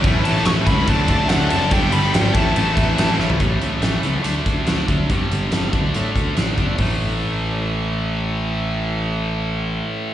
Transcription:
<<
  \new Staff \with { instrumentName = "Lead electric guitar" } { \time 4/4 \key a \mixolydian \tempo 4 = 142 r8 a''8 cis'''8 b''8 a''4 fis''8 a''8 | g''8 b''8 g''8 a''2 r8 | r1 | r1 |
r1 | r1 | }
  \new Staff \with { instrumentName = "Analog synth pad" } { \time 4/4 \key a \mixolydian << { <a b'>2 <d' e''>2 | g4. <a b'>2~ <a b'>8 | r1 | r1 |
r1 | r1 | } \\ { e'2 a'2~ | a'4. e'2~ e'8 | r1 | r1 |
r1 | r1 | } >> }
  \new Staff \with { instrumentName = "Distorted electric guitar" } { \time 4/4 \key a \mixolydian <a, e a cis' e'>2 <d fis a d'>2 | <g, d g b d'>4. <a, e a cis' e'>2 <a, e a cis' e'>8 | r1 | r1 |
r1 | r1 | }
  \new Staff \with { instrumentName = "Distorted electric guitar" } { \clef bass \time 4/4 \key a \mixolydian <a, e a>8 <a, e a>8 <a, e a>8 <a, e a>8 <d a d'>8 <d a d'>8 <d a d'>8 <d a d'>8 | <g, d g>8 <g, d g>8 <g, d g>8 <a, e a>8 <a, e a>8 <a, e a>8 <a, e a>8 <a, e a>8 | <a, e a>4 <a, e a>8 <a, e a>8 <d a d'>4 <d a d'>8 <d a d'>8 | <g, d g>4 <g, d g>8 <d a d'>8 <d a d'>4 <d a d'>8 <d a d'>8 |
<a, e a>1~ | <a, e a>1 | }
  \new Staff \with { instrumentName = "Picked electric bass" } { \clef bass \time 4/4 \key a \mixolydian a,,8 a,,8 a,,8 cis,8 d,8 d,8 d,8 fis,,8 | g,,8 g,,8 gis,,8 a,,8 a,,8 a,,8 a,,8 a,,8 | a,,8 a,,8 a,,8 cis,8 d,8 d,8 d,8 d,8 | g,,8 g,,8 g,,8 d,8 a,8 d,8 a,,8 g,,8 |
a,,1~ | a,,1 | }
  \new DrumStaff \with { instrumentName = "Drums" } \drummode { \time 4/4 <bd cymr>8 cymr16 sn16 <cymr sn>8 <bd cymr>8 <bd cymr>8 <bd cymr>8 <cymr sn>8 cymr8 | <bd cymr>8 cymr16 sn16 <cymr sn>8 <bd cymr>8 cymr8 <bd cymr>8 <cymr sn>8 sn16 tomfh16 | <hh bd>8 hh8 <hh sn>8 hh8 hh8 <hh bd>8 <hh sn>8 <hh bd>8 | <hh bd>8 hh8 <hh sn>8 <hh bd>8 hh8 <hh bd>8 <hh sn>8 <hh bd>8 |
<hho bd>4 r4 r4 r4 | r4 r4 r4 r4 | }
>>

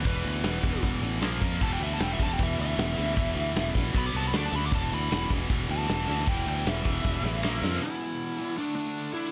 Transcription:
<<
  \new Staff \with { instrumentName = "Lead electric guitar" } { \time 4/4 \key d \mixolydian \tempo 4 = 155 b'2 r2 | a''16 g''16 e''16 a''16 g''16 e''16 a''16 g''16 e''8 e''4.~ | e''4. r8 b''16 d'''16 a''16 b''16 d'''16 a''16 b''16 d'''16 | a''8 b''4 r4 a''4. |
g''8 g''8 e''2. | e'2 d'8 d'4 e'8 | }
  \new Staff \with { instrumentName = "Distorted electric guitar" } { \clef bass \time 4/4 \key d \mixolydian <e, b, e>8 <e, b, e>8 <e, b, e>8 <e, b, e>8 <e, b, e>8 <e, b, e>8 <ais, eis ais>8 <ais, eis ais>8 | <e, b, e>8 <e, b, e>8 <e, b, e>8 <e, b, e>8 <e, b, e>8 <e, b, e>8 <e, b, e>8 <e, b, e>8 | <e, b, e>8 <e, b, e>8 <e, b, e>8 <e, b, e>8 <b, fis b>8 <b, fis b>8 <d a d'>8 <d a d'>8 | <e, b, e>8 <e, b, e>8 <e, b, e>8 <e, b, e>8 <e, b, e>8 <e, b, e>8 <e, b, e>8 <e, b, e>8 |
<e, b, e>8 <e, b, e>8 <e, b, e>8 <e, b, e>8 <e, b, e>8 <e, b, e>8 <ais, eis ais>8 <ais, eis ais>8 | <e, b, e>4. <e, b, e>8 <d a d'>4. <d a d'>8 | }
  \new Staff \with { instrumentName = "Distorted electric guitar" } { \clef bass \time 4/4 \key d \mixolydian <e, b, e>8 <e, b, e>8 <e, b, e>8 <e, b, e>8 <e, b, e>8 <e, b, e>8 <ais, eis ais>8 <ais, eis ais>8 | <e, b, e>8 <e, b, e>8 <e, b, e>8 <e, b, e>8 <e, b, e>8 <e, b, e>8 <e, b, e>8 <e, b, e>8 | <e, b, e>8 <e, b, e>8 <e, b, e>8 <e, b, e>8 <b, fis b>8 <b, fis b>8 <d a d'>8 <d a d'>8 | <e, b, e>8 <e, b, e>8 <e, b, e>8 <e, b, e>8 <e, b, e>8 <e, b, e>8 <e, b, e>8 <e, b, e>8 |
<e, b, e>8 <e, b, e>8 <e, b, e>8 <e, b, e>8 <e, b, e>8 <e, b, e>8 <ais, eis ais>8 <ais, eis ais>8 | r1 | }
  \new Staff \with { instrumentName = "Distorted electric guitar" } { \clef bass \time 4/4 \key d \mixolydian <e, b, e>2. <ais, eis ais>4 | <e, b, e>2.~ <e, b, e>8 <e, b, e>8 | <e, b, e>2 <b, fis b>4 <d a d'>4 | <e, b, e>2.~ <e, b, e>8 <e, b, e>8 |
<e, b, e>2. <ais, eis ais>4 | r1 | }
  \new Staff \with { instrumentName = "Fingered electric bass" } { \clef bass \time 4/4 \key d \mixolydian e,,8 d,8 e,,8 e,,8 e,,8 a,,8 ais,,8 eis,8 | e,,8 d,8 e,,8 e,,8 e,,8 d,8 e,,8 d,8 | e,,8 d,8 e,,8 ais,,8 b,,8 c,8 d,8 d,8 | e,,8 d,8 e,,8 e,,8 e,,8 d,8 e,,8 d,8 |
e,,8 d,8 e,,8 e,,8 e,,8 a,,8 ais,,8 eis,8 | r1 | }
  \new DrumStaff \with { instrumentName = "Drums" } \drummode { \time 4/4 <hho bd>8 hho8 <hho sn>8 <hho bd>8 <bd sn>4 sn8 bd8 | <cymc bd>8 hho8 <hho sn>8 <hho bd>8 <hho bd>8 hho8 <hho sn>8 hho8 | <hho bd>8 hho8 <hho sn>8 <hho bd>8 <hho bd>8 hho8 <hho sn>8 hho8 | <hho bd>8 hho8 <hho sn>8 <hho bd>8 <hho bd>8 hho8 <hho sn>8 hho8 |
<hho bd>8 hho8 <hho sn>8 <hho bd>8 <bd sn>8 sn8 sn8 sn8 | r4 r4 r4 r4 | }
>>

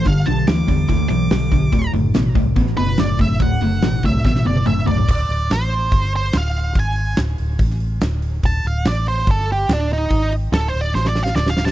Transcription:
<<
  \new Staff \with { instrumentName = "Lead electric guitar" } { \time 4/4 \key d \mixolydian \tempo 4 = 143 f''8 a''8 d'''4 d'''8 d'''4.~ | d'''8 r2 b'8 d''8 e''8 | fis''4. e''8 e''8 d''8 e''8 d''8 | d''4 c''4. c''8 f''4 |
gis''4 r2. | a''8 f''8 d''8 c''8 a'8 g'8 d'8 ees'8~ | ees'8 r8 \tuplet 3/2 { a'8 c''8 d''8 c''8 d''8 f''8 d''8 f''8 a''8 } | }
  \new Staff \with { instrumentName = "Overdriven electric guitar" } { \clef bass \time 4/4 \key d \mixolydian <g, d>8 <g, d>8 <g, e>8 <g, d>8 <g, e>8 <g, e>8 <g, d>8 <g, d>8 | <d, a,>8 <d, a,>8 <d, b,>8 <d, a,>8 <d, b,>8 <d, b,>8 <d, a,>8 <d, a,>8 | <d, a,>8 <d, a,>8 <d, b,>8 <d, a,>8 <d, b,>8 <d, b,>8 <d, a,>8 <d, a,>8 | r1 |
r1 | r1 | r1 | }
  \new Staff \with { instrumentName = "Fingered electric bass" } { \clef bass \time 4/4 \key d \mixolydian g,,8 b,,8 d,8 e,8 d,8 b,,8 b,,8 b,,8 | d,,8 fis,,8 a,,8 c,8 a,,8 fis,,8 fis,,8 fis,,8 | d,,8 fis,,8 a,,8 c,8 a,,8 fis,,8 fis,,8 fis,,8 | d,,8 d,,8 a,,4 g,,4 d,,4 |
gis,,4 d,,8 d,,8 a,,4 d,,4 | d,,8 d,,8 a,,4 g,,4 d,,4 | gis,,4 d,,8 d,,8 a,,4 d,,4 | }
  \new DrumStaff \with { instrumentName = "Drums" } \drummode { \time 4/4 <hho bd>8 hho8 <hho sn>8 <hho bd>8 <hho bd>8 hho8 <hho sn>8 <hho bd>8 | <hho bd>8 hho8 <hho sn>8 <hho bd>8 <hho bd>16 sn16 hho8 <hho sn>8 <hho bd>8 | <hho bd>8 hho8 <hho sn>8 <hho bd>8 <bd sn>16 sn8 tommh16 toml8 tomfh16 tomfh16 | <cymc bd>8 hho8 <hho sn>8 hho8 <hho bd>16 sn16 hho8 <hho sn>8 hho8 |
<hho bd>8 hho8 <hho sn>8 hho8 <hho bd>16 sn16 hho8 <hho sn>8 hho8 | <hho bd>8 hho8 <hho sn>8 hho8 <hho bd>16 sn16 hho8 <hho sn>8 hho8 | <hho bd>8 hho8 <hho sn>8 hho8 sn16 sn16 sn16 sn16 sn16 sn16 sn16 sn16 | }
>>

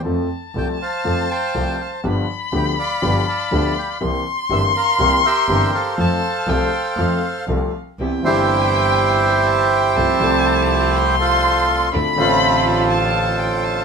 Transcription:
<<
  \new Staff \with { instrumentName = "Violin" } { \time 4/4 \key f \major \tempo 4 = 122 a''1 | b''1 | c'''1 | a''4 g''4 f''4. r8 |
\key c \major g''2. a''8 g''8 | a''2 c'''2 | b''2 a''4 g''8 a''8 | }
  \new Staff \with { instrumentName = "Bandoneon" } { \time 4/4 \key f \major << { r4 g''8 a''4 g''4 f''8 | r4 g''8 b''4 a''4 g''8 | r4 e''8 f''4 e''4 f''8~ | f''2. r4 |
\key c \major r8 c''2.~ c''8~ | c''2~ c''8 c''4 r8 | r8 c''2.~ c''8 | } \\ { r4. <c'' f''>4 c''4. | r4. <d'' f''>4 <d'' f''>4. | r4. bes'4 <g' bes'>4 <a' c''>8~ | <a' c''>2. r4 |
r8 <e' g'>2.~ <e' g'>8~ | <e' g'>2~ <e' g'>8 <f' a'>4. | r8 <f' a'>2.~ <f' a'>8 | } >> }
  \new Staff \with { instrumentName = "String section" } { \time 4/4 \key f \major r1 | r1 | r1 | r1 |
\key c \major <b c' e'>8 <c' e'>2.~ <c' e'>8 | <a c' f'>8 <f a c'>2.~ <f a c'>8 | <c' d' f'>8 <c' d' f'>2.~ <c' d' f'>8 | }
  \new Staff \with { instrumentName = "Grand piano" } { \time 4/4 \key f \major <f, f a c' a'>8 r8 <c, c f a c' a'>8 r8 <f, f a c' a'>8 r8 <c, c f a c' a'>8 r8 | <g,, g, f b d' g'>8 r8 <d, d f b d' g'>8 r8 <g,, g, f b d' g'>8 r8 <d, d f b d' g'>8 r8 | <c, c e bes c' g'>8 r8 <g,, g, e bes c' g'>8 r8 <c, c e bes c' g'>8 r8 <g,, g, e bes c' g'>8 r8 | <f, f a c' a'>8 r8 <c, c f a c' a'>8 r8 <f, f a c' a'>8 r8 <c, c f a c' a'>8 r8 |
\key c \major <c, c e b c' g'>8 <g,, g, e g c' g'>2.~ <g,, g, e g c' g'>8 | <c, c f a c' a'>8 <c, c f a c' a'>2.~ <c, c f a c' a'>8 | <d, d a c' f'>8 <a,, a, d a c' f'>2.~ <a,, a, d a c' f'>8 | }
  \new Staff \with { instrumentName = "Double bass" } { \clef bass \time 4/4 \key f \major f,8 r8 c,8 r8 f,8 r8 c,8 r8 | g,,8 r8 d,8 r8 g,,8 r8 d,8 r8 | c,8 r8 g,,8 r8 c,8 r8 g,,8 r8 | f,8 r8 c,8 r8 f,8 r8 c,8 r8 |
\key c \major c,8 g,,2.~ g,,8 | c,8 c,2.~ c,8 | d,8 a,,2.~ a,,8 | }
>>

